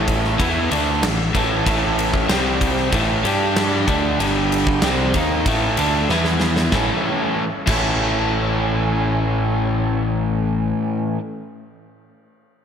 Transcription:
0.00 0.36 A1 loud
0.00 0.38 A2 medium
0.00 0.37 E3 medium
0.00 0.39 A3 loud
0.00 2.27 E4 medium
0.00 2.27 A4 medium
0.00 2.27 C#5 medium
0.00 2.28 E5 medium
0.08 kick medium
0.08 ride medium
0.24 snare soft
0.38 0.69 E2 medium
0.38 0.70 E3 loud
0.38 0.70 B3 medium
0.38 0.70 E4 loud
0.38 kick loud
0.38 ride medium
0.70 1.01 D2 medium
0.70 1.01 D3 medium
0.70 1.02 A3 loud
0.70 1.02 D4 loud
0.70 ride medium
1.02 1.32 A1 medium
1.02 1.28 A2 medium
1.02 1.28 E3 medium
1.02 snare loud
1.02 ride loud
1.34 1.64 A1 medium
1.34 1.64 A2 medium
1.34 1.65 E3 medium
1.34 1.65 A3 medium
1.34 kick medium
1.34 ride medium
1.66 2.26 A1 loud
1.66 2.28 A2 medium
1.66 2.29 E3 medium
1.66 2.29 A3 loud
1.66 kick loud
1.66 ride loud
1.99 ride medium
2.14 kick medium
2.29 2.89 C2 loud
2.29 2.92 C3 medium
2.29 2.92 G3 medium
2.29 2.92 C4 medium
2.29 2.92 G4 medium
2.29 2.92 C5 medium
2.29 2.92 G5 medium
2.29 snare loud
2.29 ride loud
2.61 kick medium
2.61 ride medium
2.77 snare soft
2.92 3.22 A1 medium
2.92 3.23 A2 loud
2.92 3.23 E3 medium
2.92 3.23 A3 loud
2.92 kick loud
2.92 ride medium
3.23 3.84 G2 loud
3.23 3.86 G3 medium
3.23 3.87 D4 medium
3.23 3.88 D4 medium
3.23 3.87 G4 loud
3.23 3.88 G4 medium
3.23 3.87 D5 medium
3.23 3.88 G5 medium
3.23 ride medium
3.56 snare loud
3.56 ride loud
3.87 4.18 D2 medium
3.87 4.18 D3 medium
3.87 4.19 A3 medium
3.87 4.19 D4 medium
3.87 kick loud
3.87 ride medium
4.19 4.79 G1 loud
4.19 4.82 G2 medium
4.19 4.82 D3 medium
4.19 4.83 G3 loud
4.19 4.82 D4 medium
4.19 4.82 G4 medium
4.19 4.82 D5 medium
4.19 4.82 G5 medium
4.19 ride medium
4.52 ride medium
4.67 kick medium
4.82 5.12 C2 loud
4.82 5.14 C3 medium
4.82 5.14 G3 medium
4.82 5.14 C4 loud
4.82 6.09 A4 medium
4.82 snare loud
4.82 ride medium
5.14 5.44 D#2 medium
5.14 5.46 D#3 medium
5.14 5.46 A#3 loud
5.14 5.46 D#4 loud
5.14 kick medium
5.14 ride medium
5.46 5.76 A1 medium
5.46 5.77 A2 medium
5.46 5.78 E3 medium
5.46 5.77 A3 loud
5.46 kick loud
5.46 ride medium
5.77 6.08 D2 medium
5.77 6.09 D3 medium
5.77 6.09 A3 medium
5.77 6.10 D4 loud
5.77 ride medium
6.09 6.69 E2 loud
6.09 6.72 E3 medium
6.09 6.72 B3 medium
6.09 6.72 B3 loud
6.09 6.71 E4 medium
6.09 6.73 E4 loud
6.09 6.72 B4 medium
6.09 6.72 E5 medium
6.09 snare medium
6.25 snare medium
6.40 snare medium
6.56 snare medium
6.72 6.91 A1 medium
6.72 7.43 A2 medium
6.72 7.43 E3 medium
6.72 7.43 A3 medium
6.72 10.02 C#4 medium
6.72 7.43 C#4 medium
6.72 10.02 E4 medium
6.72 10.02 A4 medium
6.72 7.43 A4 medium
6.72 10.03 C#5 medium
6.72 kick loud
6.72 snare medium
6.76 7.44 E4 loud
7.66 10.72 A1 medium
7.66 11.16 A2 medium
7.66 11.17 E3 medium
7.66 11.19 A3 loud
7.66 11.19 C#4 loud
7.66 11.20 E4 loud
7.66 11.20 A4 loud
7.66 kick loud
7.66 crash medium

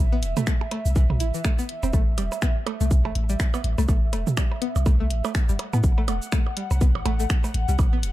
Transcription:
0.00 0.24 A1 loud
0.00 5.31 E5 medium
0.12 0.15 B3 loud
0.23 0.35 E1 medium
0.23 closed hi-hat medium
0.23 cabasa soft
0.37 0.39 A3 loud
0.37 closed hi-hat soft
0.37 mid tom medium
0.37 cabasa soft
0.37 percussion blips soft
0.47 0.53 A3 medium
0.47 finger snap medium
0.47 kick loud
0.47 cabasa medium
0.61 percussion blips medium
0.71 0.80 A3 medium
0.71 closed hi-hat medium
0.71 percussion blips soft
0.86 1.22 C2 loud
0.86 cabasa soft
0.96 1.01 E3 loud
0.96 kick loud
0.96 cabasa medium
1.10 mid tom medium
1.10 percussion blips soft
1.20 1.32 A1 medium
1.20 1.26 E4 medium
1.20 closed hi-hat medium
1.20 cabasa soft
1.34 1.40 E3 medium
1.34 cabasa soft
1.45 1.50 A3 medium
1.45 finger snap medium
1.45 kick medium
1.45 cabasa medium
1.45 percussion blips soft
1.59 1.63 B3 medium
1.59 cabasa medium
1.69 closed hi-hat medium
1.83 1.92 E1 loud
1.83 1.87 C4 medium
1.83 cabasa soft
1.83 percussion blips soft
1.93 2.19 A1 loud
1.93 2.02 A3 medium
1.93 kick loud
1.93 cabasa medium
1.93 percussion blips soft
2.18 2.30 E1 medium
2.18 2.23 G3 medium
2.18 closed hi-hat medium
2.18 cabasa soft
2.18 percussion blips soft
2.32 cabasa soft
2.32 percussion blips soft
2.42 2.46 B3 loud
2.42 finger snap loud
2.42 kick loud
2.42 cabasa medium
2.66 2.70 A3 loud
2.66 closed hi-hat medium
2.66 percussion blips medium
2.66 percussion blips soft
2.81 3.07 C2 loud
2.81 2.85 A3 medium
2.81 cabasa soft
2.91 kick loud
2.91 cabasa medium
3.05 3.14 G1 medium
3.05 3.11 A3 medium
3.05 percussion blips medium
3.05 percussion blips soft
3.15 3.36 A1 loud
3.15 closed hi-hat medium
3.29 3.34 G3 medium
3.29 cabasa soft
3.40 finger snap loud
3.40 kick loud
3.40 cabasa medium
3.40 percussion blips soft
3.54 3.56 B3 loud
3.54 cabasa medium
3.54 percussion blips medium
3.64 3.76 A1 medium
3.64 closed hi-hat medium
3.78 3.87 C2 loud
3.78 3.81 A3 loud
3.78 cabasa soft
3.78 percussion blips soft
3.88 4.14 A1 loud
3.88 3.94 A3 medium
3.88 kick loud
3.88 cabasa medium
3.88 percussion blips soft
4.13 4.25 E1 medium
4.13 4.21 A3 medium
4.13 closed hi-hat loud
4.13 cabasa soft
4.13 percussion blips soft
4.27 mid tom medium
4.27 cabasa soft
4.37 4.43 G3 medium
4.37 finger snap loud
4.37 kick loud
4.37 cabasa medium
4.37 percussion blips medium
4.51 percussion blips soft
4.62 4.65 B3 loud
4.62 closed hi-hat medium
4.76 5.12 C2 loud
4.76 cabasa soft
4.76 percussion blips soft
4.86 4.89 A3 loud
4.86 kick loud
4.86 cabasa medium
4.86 percussion blips soft
5.00 5.04 A3 medium
5.10 5.22 A1 medium
5.10 closed hi-hat medium
5.16 8.12 F#5 medium
5.25 5.31 A3 medium
5.25 cabasa soft
5.25 percussion blips medium
5.25 percussion blips soft
5.35 finger snap loud
5.35 kick loud
5.35 cabasa medium
5.49 5.58 G1 loud
5.49 5.53 G3 medium
5.49 cabasa soft
5.59 closed hi-hat medium
5.59 percussion blips soft
5.73 5.82 A2 medium
5.73 5.76 B3 loud
5.73 cabasa soft
5.73 percussion blips medium
5.84 6.09 A1 loud
5.84 kick loud
5.84 cabasa medium
5.98 6.00 A3 loud
5.98 percussion blips soft
6.08 6.20 E1 medium
6.08 6.14 A3 medium
6.08 closed hi-hat loud
6.08 cabasa soft
6.08 percussion blips medium
6.22 cabasa soft
6.32 6.41 A3 medium
6.32 finger snap medium
6.32 kick loud
6.32 cabasa medium
6.32 percussion blips soft
6.47 percussion blips soft
6.57 6.62 G3 medium
6.57 closed hi-hat loud
6.71 6.97 C2 loud
6.71 cabasa soft
6.71 percussion blips soft
6.81 6.85 B3 loud
6.81 kick loud
6.81 cabasa soft
6.95 7.04 G1 medium
6.95 percussion blips medium
7.06 7.27 A1 loud
7.06 7.09 A3 loud
7.06 closed hi-hat medium
7.06 percussion blips medium
7.06 percussion blips soft
7.20 7.24 A3 medium
7.20 cabasa soft
7.30 finger snap medium
7.30 kick loud
7.30 cabasa medium
7.30 percussion blips soft
7.44 7.50 A3 medium
7.44 cabasa soft
7.44 percussion blips soft
7.54 7.66 A1 medium
7.54 closed hi-hat medium
7.68 7.77 C2 loud
7.68 7.73 G3 medium
7.68 cabasa soft
7.79 8.05 A1 loud
7.79 kick loud
7.79 cabasa soft
7.79 percussion blips medium
7.79 percussion blips soft
7.93 7.95 B3 loud
8.03 8.12 E1 medium
8.03 closed hi-hat loud
8.03 cabasa soft

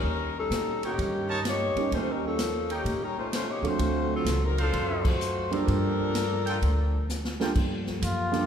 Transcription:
0.00 0.47 D#2 medium
0.00 0.34 G3 medium
0.00 0.34 C#4 medium
0.00 0.34 D#4 medium
0.00 0.34 A#4 medium
0.38 0.84 G3 medium
0.38 0.83 C#4 medium
0.38 0.84 D#4 medium
0.38 0.83 A4 medium
0.50 0.94 A#2 medium
0.50 snare medium
0.50 hi-hat pedal medium
0.50 ride medium
0.83 1.42 D#3 medium
0.83 1.42 A#3 medium
0.83 1.42 C#4 medium
0.83 1.26 D#4 medium
0.83 1.42 G4 medium
0.83 1.26 A#4 medium
0.83 1.27 C#5 medium
0.83 1.26 G5 medium
0.83 ride soft
0.98 1.72 G2 medium
0.98 kick soft
0.98 ride medium
1.29 1.40 D#4 medium
1.29 1.40 A#4 medium
1.29 1.40 C#5 medium
1.29 1.40 A5 loud
1.45 1.90 A#3 medium
1.45 1.89 D#4 medium
1.45 1.90 G4 medium
1.45 1.90 C#5 loud
1.45 snare medium
1.45 hi-hat pedal medium
1.45 ride medium
1.75 2.35 G3 medium
1.75 2.35 A#3 soft
1.75 2.35 C#4 medium
1.75 2.36 D#4 medium
1.75 2.36 A#4 medium
1.75 muted upright bass stroke soft
1.75 ride soft
1.92 2.81 D#2 medium
1.92 2.08 A3 medium
1.92 2.08 C#4 medium
1.92 2.08 F4 medium
1.92 2.08 C5 loud
1.92 kick soft
1.92 ride medium
2.08 2.24 G3 medium
2.08 2.24 C#4 medium
2.08 2.24 D#4 medium
2.08 2.10 A4 medium
2.08 2.24 A#4 medium
2.26 2.71 F3 medium
2.26 2.71 A#3 medium
2.26 2.71 C#4 medium
2.26 2.71 A4 medium
2.39 snare medium
2.39 hi-hat pedal medium
2.39 ride medium
2.70 3.02 D#3 medium
2.70 3.02 A#3 medium
2.70 3.02 C#4 medium
2.70 3.29 D#4 medium
2.70 3.02 G4 medium
2.70 3.29 A#4 medium
2.70 3.29 C#5 medium
2.70 3.29 G5 medium
2.70 ride soft
2.85 3.59 A#2 medium
2.85 kick soft
2.85 ride medium
3.03 3.18 G3 medium
3.03 3.18 C#4 medium
3.03 3.17 D#4 medium
3.03 3.18 A#4 medium
3.19 3.32 A3 medium
3.19 3.32 C#4 medium
3.19 3.32 F4 medium
3.19 3.32 C5 medium
3.33 3.48 A3 medium
3.33 3.48 C#4 medium
3.33 3.48 F4 medium
3.33 3.48 C5 loud
3.33 snare medium
3.33 hi-hat pedal medium
3.33 ride medium
3.50 3.65 A#3 medium
3.50 3.65 D#4 medium
3.50 3.65 G4 medium
3.50 3.65 C#5 medium
3.62 3.77 D#2 medium
3.62 4.22 F#3 medium
3.62 4.22 C4 soft
3.62 4.23 D4 medium
3.62 4.23 A4 medium
3.62 4.23 F5 soft
3.62 ride soft
3.67 4.12 A3 medium
3.67 4.12 F4 medium
3.67 4.12 F#4 medium
3.67 4.12 C5 loud
3.79 4.22 D2 medium
3.79 kick soft
3.79 ride medium
4.15 4.42 F#3 medium
4.15 4.42 C4 medium
4.15 4.42 F4 medium
4.15 4.42 A4 medium
4.25 4.69 C#2 medium
4.25 snare medium
4.25 hi-hat pedal medium
4.25 ride medium
4.43 4.58 F#3 medium
4.43 4.58 C4 medium
4.43 4.59 D#4 medium
4.43 4.58 A#4 medium
4.58 5.06 F#3 medium
4.58 5.06 C4 medium
4.58 5.17 D4 medium
4.58 5.17 F4 medium
4.58 5.06 F4 medium
4.58 5.06 A4 medium
4.58 5.17 C5 medium
4.58 5.17 F5 medium
4.58 ride soft
4.73 5.63 F#2 medium
4.73 kick soft
4.73 ride soft
5.05 5.53 A3 medium
5.05 5.53 F4 medium
5.05 5.53 F#4 medium
5.05 5.53 C5 medium
5.05 kick medium
5.05 crash medium
5.21 hi-hat pedal medium
5.51 7.40 F3 medium
5.51 6.10 G3 medium
5.51 6.10 A#3 medium
5.51 6.11 D4 medium
5.51 7.40 D4 medium
5.51 6.11 F4 medium
5.51 7.39 A4 medium
5.51 7.40 A#4 medium
5.51 6.11 C5 medium
5.51 ride soft
5.68 6.57 G2 medium
5.68 kick soft
5.68 ride medium
6.15 snare medium
6.15 hi-hat pedal medium
6.15 ride medium
6.46 6.56 F4 medium
6.46 6.56 A4 medium
6.46 6.56 A#4 medium
6.46 6.56 G5 medium
6.46 ride soft
6.62 7.51 D2 medium
6.62 kick soft
6.62 ride medium
7.09 snare soft
7.09 hi-hat pedal medium
7.25 snare medium
7.40 7.55 G3 medium
7.40 7.55 A#3 medium
7.40 7.55 D4 medium
7.40 7.50 F4 medium
7.40 7.55 F4 medium
7.40 7.50 A4 medium
7.40 7.55 A4 medium
7.40 7.50 A#4 medium
7.40 7.50 G5 medium
7.40 snare medium
7.55 8.00 G2 medium
7.55 8.46 F3 medium
7.55 8.46 A#3 medium
7.55 8.46 G4 medium
7.55 8.46 A4 medium
7.55 kick medium
7.55 crash medium
7.87 snare soft
8.02 8.46 F#2 medium
8.02 8.46 F4 medium
8.02 kick soft
8.02 hi-hat pedal medium
8.02 ride medium
8.32 8.46 G3 medium
8.32 8.46 A#3 medium
8.32 8.46 D4 medium
8.32 8.46 F4 medium
8.32 8.46 A4 medium
8.32 snare soft
8.32 ride soft

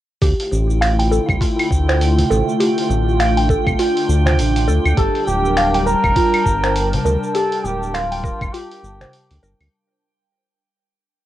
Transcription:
0.21 0.34 D2 medium
0.21 4.93 D3 medium
0.21 4.93 A3 medium
0.21 2.57 E4 medium
0.21 4.93 F4 medium
0.21 0.80 G4 medium
0.21 9.74 G5 medium
0.21 kick loud
0.21 open hi-hat medium
0.21 shaker soft
0.40 open hi-hat soft
0.52 1.20 A1 medium
0.52 darbuka ka soft
0.52 shaker medium
0.70 shaker soft
0.81 0.92 F5 loud
0.81 finger snap medium
0.81 open hi-hat medium
0.81 shaker soft
0.99 1.10 G5 medium
0.99 open hi-hat soft
1.11 1.28 A4 medium
1.11 darbuka ka medium
1.11 shaker medium
1.29 1.37 C2 medium
1.29 kick loud
1.29 claves medium
1.29 shaker soft
1.41 1.58 F4 medium
1.41 kick medium
1.41 open hi-hat medium
1.41 shaker soft
1.59 open hi-hat soft
1.59 claves medium
1.71 2.24 D2 medium
1.71 kick medium
1.71 shaker medium
1.88 1.96 C5 medium
1.88 finger snap medium
1.88 open hi-hat soft
1.88 darbuka ka medium
1.88 shaker soft
2.01 open hi-hat medium
2.01 shaker soft
2.18 open hi-hat soft
2.18 darbuka ka medium
2.18 darbuka dum medium
2.18 shaker soft
2.30 2.42 A1 medium
2.30 2.47 A4 medium
2.30 darbuka ka soft
2.30 darbuka tek medium
2.30 shaker medium
2.49 shaker soft
2.60 9.69 D4 medium
2.60 3.18 G4 medium
2.60 open hi-hat medium
2.60 shaker soft
2.78 open hi-hat soft
2.90 3.57 A1 medium
2.90 darbuka ka medium
2.90 shaker medium
3.08 shaker soft
3.20 3.30 F5 loud
3.20 finger snap medium
3.20 open hi-hat medium
3.20 shaker soft
3.37 3.48 G5 medium
3.37 open hi-hat soft
3.49 3.66 A4 medium
3.49 kick loud
3.49 darbuka ka medium
3.49 shaker medium
3.66 3.75 C2 loud
3.66 kick medium
3.66 claves medium
3.66 shaker soft
3.79 3.96 F4 medium
3.79 open hi-hat medium
3.79 shaker soft
3.97 open hi-hat soft
4.09 4.40 D2 loud
4.09 shaker medium
4.26 4.33 C5 medium
4.26 finger snap medium
4.26 open hi-hat soft
4.26 darbuka dum medium
4.26 shaker soft
4.39 4.69 A1 medium
4.39 open hi-hat medium
4.39 shaker soft
4.56 open hi-hat soft
4.56 shaker soft
4.68 4.80 D2 medium
4.68 4.84 A4 medium
4.68 shaker medium
4.85 4.94 D2 medium
4.85 claves medium
4.85 shaker soft
4.97 5.09 G1 loud
4.97 9.69 G3 medium
4.97 5.56 G4 medium
4.97 5.25 A4 loud
4.97 9.69 A#4 medium
4.97 9.69 A5 medium
4.97 kick loud
4.97 open hi-hat medium
4.97 shaker soft
5.15 open hi-hat soft
5.27 5.95 D1 medium
5.27 5.83 G4 medium
5.27 darbuka ka soft
5.27 shaker medium
5.45 shaker soft
5.57 5.67 F5 loud
5.57 finger snap medium
5.57 open hi-hat medium
5.57 shaker soft
5.74 5.86 G5 medium
5.74 open hi-hat soft
5.86 6.03 A#4 medium
5.86 7.01 A#4 loud
5.86 darbuka ka medium
5.86 shaker medium
6.04 6.12 F1 loud
6.04 kick loud
6.04 claves medium
6.04 shaker soft
6.16 6.33 F4 medium
6.16 kick loud
6.16 open hi-hat medium
6.16 shaker soft
6.34 open hi-hat soft
6.34 claves medium
6.46 6.99 G1 medium
6.46 kick medium
6.46 shaker medium
6.63 6.71 C5 medium
6.63 finger snap medium
6.63 open hi-hat soft
6.63 darbuka ka medium
6.63 shaker soft
6.76 open hi-hat medium
6.76 shaker soft
6.93 open hi-hat soft
6.93 darbuka ka soft
6.93 darbuka dum loud
6.93 shaker soft
7.05 7.17 D2 medium
7.05 7.22 A#4 medium
7.05 darbuka ka soft
7.05 darbuka tek medium
7.05 shaker medium
7.23 shaker soft
7.35 7.93 G4 medium
7.35 7.66 A4 loud
7.35 open hi-hat medium
7.35 shaker soft
7.52 open hi-hat soft
7.64 8.32 D1 medium
7.64 7.96 G4 loud
7.64 darbuka ka soft
7.64 shaker medium
7.83 shaker soft
7.94 8.54 F4 medium
7.94 8.04 F5 loud
7.94 finger snap medium
7.94 open hi-hat medium
7.94 shaker soft
8.12 8.23 G5 medium
8.12 open hi-hat soft
8.24 8.41 A#4 medium
8.24 kick loud
8.24 darbuka ka medium
8.24 shaker medium
8.41 8.50 F1 loud
8.41 kick loud
8.41 claves medium
8.41 shaker soft
8.53 8.71 F4 medium
8.53 9.43 G4 medium
8.53 open hi-hat medium
8.53 shaker soft
8.72 open hi-hat soft
8.83 9.05 G1 loud
8.83 shaker medium
9.01 9.08 C5 medium
9.01 finger snap medium
9.01 open hi-hat soft
9.01 darbuka dum loud
9.01 shaker soft
9.13 open hi-hat medium
9.13 shaker soft
9.31 9.39 D2 loud
9.31 open hi-hat soft
9.31 shaker soft
9.43 9.55 G1 medium
9.43 9.60 A#4 medium
9.43 shaker medium
9.60 9.69 D2 loud
9.60 open hi-hat soft
9.60 claves medium
9.60 shaker soft

